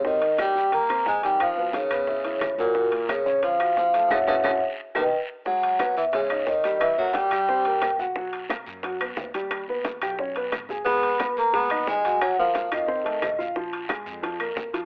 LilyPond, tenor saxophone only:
\new Staff \with { instrumentName = "Tenor saxophone" } { \clef bass \time 4/4 \key ees \minor \tempo 4 = 178 ees4 g4 bes4 aes8 g8 | f4 des2~ des8 bes,8~ | bes,4 des4 f4 f4 | des8 des8 des8 r4 dis8 r4 |
fis4. e8 des4 dis4 | fes8 ges8 g2~ g8 r8 | r1 | r1 |
ces'4. bes8 ces'4 aes4 | ges8 f4 ees2 r8 | r1 | }